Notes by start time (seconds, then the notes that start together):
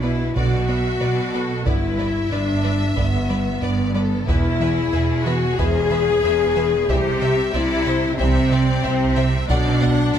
Already playing: B1 B2 B4
0.02 B3 E4 B4 D5
0.35 B1 B2 D3 B3 F#4 B4 D5, taiko
0.67 B3 B4 D5 E5
1.00 B1 B2 B4 D5
1.33 B3 A4 B4 D5
1.65 G1 G2 D3 B3 E4 B4 D5, taiko
1.98 G3 B4 D5 E5
2.31 G1 G2 D4 B4 D5
2.63 G3 B4 D5
2.95 G1 G2 D3 B3 B4 D5, taiko
3.29 G3 B4 D5
3.62 G1 G2 B4 D5
3.94 G3 A4 B4 D5
4.27 E1 E2 E3 B3 E4 B4 E5, taiko
4.60 E3 G#4 B4 E5
4.92 E1 E2 B4 E5
5.25 E3 F#4 B4 E5
5.57 E1 E2 B2 E3 G#4 B4 C5 E5, taiko
5.90 E3 B4 E5
6.24 E1 E2 B4 E5
6.55 E3 B4 E5
6.88 C2 C3 E3 G3 G4 C5 E5, taiko
7.21 C3 C5 E5
7.53 C2 C3 E4 C5 D5 E5
7.86 C3 C5 E5
8.18 C2 C3 E3 G3 C4 C5 E5, taiko
8.51 C3 C5 D5 E5
8.83 C2 C3 C5 E5
9.16 C3 C5 E5
9.48 B1 B2 D3 F#3 D4 D5 F#5, taiko
9.80 B3 D5 F#5, taiko low
10.14 B1 B2 D5 E5 F#5